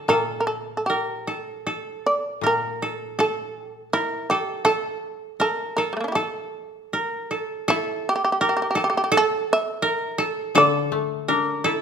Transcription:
0.00 0.86 D3 soft
0.08 2.40 A#2 soft
0.08 0.96 A4 medium
0.08 0.38 A#4 medium
0.40 0.47 A#4 soft
0.47 0.76 A4 medium
0.77 0.86 A4 soft
0.86 1.41 G4 medium
0.86 1.33 A#4 medium
1.27 1.66 A4 soft
1.67 2.50 A4 medium
2.06 2.42 D5 medium
2.41 4.65 A#2 soft
2.41 2.88 A#4 soft
2.47 3.17 A#4 medium
2.82 3.18 A4 soft
3.19 3.99 A4 medium
3.19 3.64 A4 medium
3.64 3.89 G4 medium
3.93 4.27 E4 medium
3.93 4.37 A#4 medium
4.30 4.64 G4 medium
4.30 4.64 A4 medium
4.65 5.46 A4 medium
4.65 5.36 A4 medium
5.40 5.76 A4 medium
5.40 5.84 A#4 medium
5.77 6.15 A4 medium
5.77 6.12 A#4 medium
5.93 5.96 G3 soft
5.93 6.00 A3 soft
6.01 6.15 A#3 soft
6.01 6.08 D4 soft
6.08 6.22 E4 soft
6.08 6.15 G4 soft
6.15 7.26 A4 medium
6.15 6.99 A4 medium
6.93 7.37 A#4 medium
7.31 7.68 A4 soft
7.68 8.04 E4 medium
7.68 8.47 A4 medium
8.09 8.14 G4 medium
8.16 8.22 G4 medium
8.25 8.30 G4 medium
8.32 8.37 G4 soft
8.41 8.46 G4 medium
8.41 8.81 A#4 medium
8.49 8.53 G4 soft
8.57 8.61 G4 medium
8.62 8.67 G4 soft
8.71 8.75 G4 medium
8.75 8.82 G4 soft
8.75 9.11 A4 medium
8.84 8.88 G4 medium
8.90 8.95 G4 medium
8.97 9.03 G4 medium
9.04 9.09 G4 medium
9.12 9.88 A4 medium
9.17 9.49 A4 medium
9.53 10.19 E5 medium
9.82 10.24 A#4 medium
10.18 10.55 A4 medium
10.55 11.82 D3 medium
10.55 11.34 A4 medium
10.55 11.82 D5 medium
10.92 11.82 A3 soft
11.28 11.82 D4 soft
11.28 11.70 A#4 medium
11.64 11.82 E4 soft
11.64 11.82 A4 medium

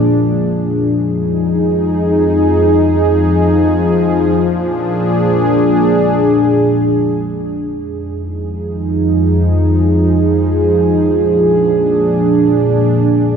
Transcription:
0.00 0.94 A#2 medium
0.00 7.70 F3 medium
0.00 0.94 D4 medium
0.00 0.94 G#4 medium
0.98 4.33 F2 medium
0.98 4.32 D#4 medium
0.98 4.32 G#4 medium
4.36 7.70 A#2 medium
4.36 7.70 D4 medium
4.36 7.70 G#4 medium
7.73 11.08 F2 medium
7.73 13.37 F3 medium
7.73 11.08 D#4 medium
7.73 13.37 G#4 medium
11.12 13.37 A#2 medium
11.12 13.37 D4 medium

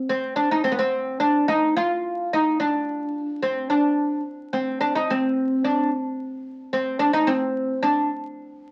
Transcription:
0.09 0.36 C4 medium
0.36 0.51 D4 medium
0.51 0.64 D#4 medium
0.64 0.71 C4 medium
0.72 0.79 B3 medium
0.79 1.17 C4 medium
1.20 1.48 D4 medium
1.48 1.74 D#4 medium
1.77 2.33 F4 loud
2.33 2.59 D#4 medium
2.60 3.42 D4 medium
3.43 3.69 C4 medium
3.70 4.21 D4 medium
4.53 4.80 C4 medium
4.81 4.95 D4 medium
4.95 5.09 D#4 medium
5.10 5.66 C4 medium
5.64 5.89 D4 medium
6.73 6.99 C4 medium
6.99 7.13 D4 medium
7.13 7.28 D#4 medium
7.27 7.85 C4 medium
7.83 8.09 D4 medium

